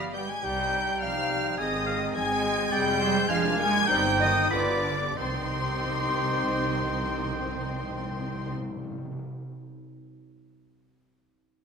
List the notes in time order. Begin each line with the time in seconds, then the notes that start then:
Already playing: G1 F3 G3 B3 G4 B5
0.00 F5
0.13 G3 B3 G5 G6
0.28 G#3 G#5 G#6
0.42 C2 G3 C4 D#4 G4 G5 G6
0.57 D#4 C5
0.72 C4 G4
0.87 D#4 C5
1.00 C2 F3 C4 G4 F5 G5 F6
1.16 D#4 C5
1.30 C4 G4
1.44 D#4 C5
1.58 G#1 D#3 G#3 C4 D#4 G#4 D#5 G#5 D#6
1.75 C4 C5
1.86 D#4 G#4 F5
2.03 C4 C5
2.14 G#1 G#3 C4 D#4 G#4 D#5 G#5 G#6
2.31 C4 C5
2.45 D#4 G#4
2.59 C4 C5
2.71 F1 G3 G#3 C4 G#4 D5 G5 G6
2.89 C4 F4
2.98 C5
3.03 G#3 G#4
3.16 C4 F4
3.28 F1 F3 G#3 D4 F5 G#5 F6
3.32 F4 G#4
3.46 D4 F4
3.57 G#3 A#3 F4 G#4 G#5 G#6
3.75 D4 F4
3.87 G1 G3 C4 D#4 G5 G6
4.04 C4 G4
4.19 D#3 G3 D#4 D#5 D#6
4.36 C4 G4
4.50 G1 D3 B3 D4 F4 D5 B5 D6
4.68 B3 G4
4.85 D4 F4
5.02 B3 G4
5.17 C2 C3 D#3 C4 D#4 G4 C5 G5 C6
5.25 C3
5.32 C3
5.39 C3
5.47 C3
5.54 C3
5.62 C3
5.69 C3
5.77 C3
5.85 C3
5.92 C3
5.99 C3
6.06 C3
6.14 C3
6.21 C3
6.28 C3
6.36 C3
6.44 C3
6.51 C3
6.58 C3
6.67 C3
6.74 C3
6.82 C3
6.89 C3
6.96 C3
7.04 C3
7.11 C3
7.18 C3
7.26 C3
7.33 C3
7.41 C3
7.47 C3
7.55 C3
7.62 C3
7.69 C3
7.77 C3
7.83 C3
7.90 C3
7.97 C3
8.04 C3
8.11 C3
8.19 C3
8.26 C3
8.34 C3
8.41 C3
8.48 C3
8.55 C3
8.62 C3
8.69 C3
8.76 C3
8.84 C3
8.91 C3
8.98 C3
9.05 C3
9.12 C3
9.19 C3